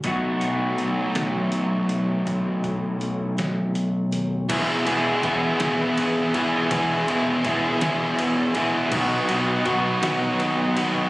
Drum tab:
CC |------|------|x-----|------|
RD |------|------|xxxxxx|xxxxxx|
HH |xxxxxx|xxxxxx|------|------|
SD |---o--|---o--|---o--|---o--|
BD |o-----|oo----|o-o---|o-o---|

CC |x-----|
RD |-xxxxx|
HH |------|
SD |---o--|
BD |o-o---|